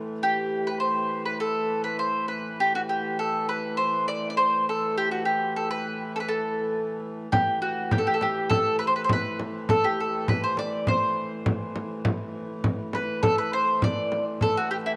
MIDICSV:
0, 0, Header, 1, 4, 480
1, 0, Start_track
1, 0, Key_signature, 0, "minor"
1, 0, Tempo, 591716
1, 174, Time_signature, 2, 2, 24, 8
1, 12138, End_track
2, 0, Start_track
2, 0, Title_t, "Mandolin"
2, 0, Program_c, 0, 25
2, 186, Note_on_c, 0, 67, 76
2, 543, Note_on_c, 0, 71, 71
2, 552, Note_off_c, 0, 67, 0
2, 645, Note_off_c, 0, 71, 0
2, 648, Note_on_c, 0, 72, 68
2, 987, Note_off_c, 0, 72, 0
2, 1018, Note_on_c, 0, 71, 61
2, 1133, Note_off_c, 0, 71, 0
2, 1136, Note_on_c, 0, 69, 74
2, 1472, Note_off_c, 0, 69, 0
2, 1491, Note_on_c, 0, 71, 68
2, 1606, Note_off_c, 0, 71, 0
2, 1615, Note_on_c, 0, 72, 72
2, 1848, Note_off_c, 0, 72, 0
2, 1851, Note_on_c, 0, 71, 65
2, 2102, Note_off_c, 0, 71, 0
2, 2111, Note_on_c, 0, 67, 78
2, 2228, Note_off_c, 0, 67, 0
2, 2232, Note_on_c, 0, 66, 71
2, 2273, Note_off_c, 0, 66, 0
2, 2347, Note_on_c, 0, 67, 67
2, 2567, Note_off_c, 0, 67, 0
2, 2589, Note_on_c, 0, 69, 74
2, 2808, Note_off_c, 0, 69, 0
2, 2830, Note_on_c, 0, 71, 71
2, 3049, Note_off_c, 0, 71, 0
2, 3060, Note_on_c, 0, 72, 83
2, 3306, Note_off_c, 0, 72, 0
2, 3309, Note_on_c, 0, 74, 79
2, 3476, Note_off_c, 0, 74, 0
2, 3488, Note_on_c, 0, 74, 60
2, 3542, Note_off_c, 0, 74, 0
2, 3546, Note_on_c, 0, 72, 77
2, 3767, Note_off_c, 0, 72, 0
2, 3806, Note_on_c, 0, 69, 71
2, 4017, Note_off_c, 0, 69, 0
2, 4036, Note_on_c, 0, 67, 81
2, 4145, Note_off_c, 0, 67, 0
2, 4148, Note_on_c, 0, 66, 64
2, 4258, Note_off_c, 0, 66, 0
2, 4262, Note_on_c, 0, 67, 70
2, 4485, Note_off_c, 0, 67, 0
2, 4513, Note_on_c, 0, 69, 68
2, 4625, Note_off_c, 0, 69, 0
2, 4628, Note_on_c, 0, 71, 78
2, 4960, Note_off_c, 0, 71, 0
2, 4995, Note_on_c, 0, 69, 73
2, 5027, Note_off_c, 0, 69, 0
2, 5030, Note_on_c, 0, 71, 62
2, 5091, Note_off_c, 0, 71, 0
2, 5098, Note_on_c, 0, 69, 74
2, 5671, Note_off_c, 0, 69, 0
2, 5940, Note_on_c, 0, 67, 77
2, 6177, Note_off_c, 0, 67, 0
2, 6180, Note_on_c, 0, 66, 71
2, 6404, Note_off_c, 0, 66, 0
2, 6426, Note_on_c, 0, 67, 62
2, 6475, Note_on_c, 0, 69, 64
2, 6489, Note_off_c, 0, 67, 0
2, 6546, Note_off_c, 0, 69, 0
2, 6546, Note_on_c, 0, 67, 67
2, 6602, Note_on_c, 0, 69, 61
2, 6614, Note_off_c, 0, 67, 0
2, 6670, Note_on_c, 0, 67, 65
2, 6675, Note_off_c, 0, 69, 0
2, 6880, Note_off_c, 0, 67, 0
2, 6891, Note_on_c, 0, 69, 90
2, 7119, Note_off_c, 0, 69, 0
2, 7129, Note_on_c, 0, 71, 71
2, 7194, Note_off_c, 0, 71, 0
2, 7197, Note_on_c, 0, 72, 68
2, 7264, Note_off_c, 0, 72, 0
2, 7267, Note_on_c, 0, 71, 69
2, 7333, Note_off_c, 0, 71, 0
2, 7336, Note_on_c, 0, 72, 70
2, 7401, Note_off_c, 0, 72, 0
2, 7404, Note_on_c, 0, 71, 88
2, 7607, Note_off_c, 0, 71, 0
2, 7866, Note_on_c, 0, 69, 83
2, 7985, Note_on_c, 0, 67, 71
2, 7987, Note_off_c, 0, 69, 0
2, 8106, Note_off_c, 0, 67, 0
2, 8115, Note_on_c, 0, 69, 65
2, 8344, Note_off_c, 0, 69, 0
2, 8347, Note_on_c, 0, 71, 78
2, 8462, Note_off_c, 0, 71, 0
2, 8465, Note_on_c, 0, 72, 79
2, 8574, Note_off_c, 0, 72, 0
2, 8588, Note_on_c, 0, 74, 77
2, 8807, Note_off_c, 0, 74, 0
2, 8828, Note_on_c, 0, 72, 78
2, 9510, Note_off_c, 0, 72, 0
2, 10502, Note_on_c, 0, 71, 71
2, 10722, Note_off_c, 0, 71, 0
2, 10729, Note_on_c, 0, 69, 88
2, 10843, Note_off_c, 0, 69, 0
2, 10856, Note_on_c, 0, 71, 80
2, 10966, Note_off_c, 0, 71, 0
2, 10978, Note_on_c, 0, 72, 87
2, 11222, Note_off_c, 0, 72, 0
2, 11225, Note_on_c, 0, 74, 85
2, 11554, Note_off_c, 0, 74, 0
2, 11700, Note_on_c, 0, 69, 87
2, 11808, Note_off_c, 0, 69, 0
2, 11822, Note_on_c, 0, 66, 77
2, 11928, Note_off_c, 0, 66, 0
2, 11931, Note_on_c, 0, 67, 75
2, 11972, Note_off_c, 0, 67, 0
2, 12055, Note_on_c, 0, 64, 69
2, 12095, Note_off_c, 0, 64, 0
2, 12138, End_track
3, 0, Start_track
3, 0, Title_t, "Hurdy-gurdy"
3, 0, Program_c, 1, 110
3, 0, Note_on_c, 1, 45, 59
3, 0, Note_on_c, 1, 52, 56
3, 2115, Note_off_c, 1, 45, 0
3, 2115, Note_off_c, 1, 52, 0
3, 2115, Note_on_c, 1, 45, 63
3, 2115, Note_on_c, 1, 52, 64
3, 5933, Note_off_c, 1, 52, 0
3, 5933, Note_on_c, 1, 52, 62
3, 5937, Note_off_c, 1, 45, 0
3, 5937, Note_on_c, 1, 45, 59
3, 9784, Note_off_c, 1, 45, 0
3, 9784, Note_on_c, 1, 45, 64
3, 9785, Note_off_c, 1, 52, 0
3, 9785, Note_on_c, 1, 52, 67
3, 12138, Note_off_c, 1, 45, 0
3, 12138, Note_off_c, 1, 52, 0
3, 12138, End_track
4, 0, Start_track
4, 0, Title_t, "Frame drum"
4, 5944, Note_on_c, 9, 64, 80
4, 6025, Note_off_c, 9, 64, 0
4, 6419, Note_on_c, 9, 64, 82
4, 6500, Note_off_c, 9, 64, 0
4, 6661, Note_on_c, 9, 64, 65
4, 6743, Note_off_c, 9, 64, 0
4, 6900, Note_on_c, 9, 64, 80
4, 6981, Note_off_c, 9, 64, 0
4, 7377, Note_on_c, 9, 64, 88
4, 7458, Note_off_c, 9, 64, 0
4, 7621, Note_on_c, 9, 64, 69
4, 7702, Note_off_c, 9, 64, 0
4, 7860, Note_on_c, 9, 64, 79
4, 7941, Note_off_c, 9, 64, 0
4, 8340, Note_on_c, 9, 64, 84
4, 8421, Note_off_c, 9, 64, 0
4, 8576, Note_on_c, 9, 64, 66
4, 8657, Note_off_c, 9, 64, 0
4, 8817, Note_on_c, 9, 64, 74
4, 8898, Note_off_c, 9, 64, 0
4, 9297, Note_on_c, 9, 64, 92
4, 9378, Note_off_c, 9, 64, 0
4, 9537, Note_on_c, 9, 64, 70
4, 9618, Note_off_c, 9, 64, 0
4, 9773, Note_on_c, 9, 64, 94
4, 9855, Note_off_c, 9, 64, 0
4, 10253, Note_on_c, 9, 64, 93
4, 10334, Note_off_c, 9, 64, 0
4, 10491, Note_on_c, 9, 64, 70
4, 10572, Note_off_c, 9, 64, 0
4, 10733, Note_on_c, 9, 64, 83
4, 10814, Note_off_c, 9, 64, 0
4, 11212, Note_on_c, 9, 64, 81
4, 11293, Note_off_c, 9, 64, 0
4, 11453, Note_on_c, 9, 64, 57
4, 11534, Note_off_c, 9, 64, 0
4, 11689, Note_on_c, 9, 64, 71
4, 11770, Note_off_c, 9, 64, 0
4, 12138, End_track
0, 0, End_of_file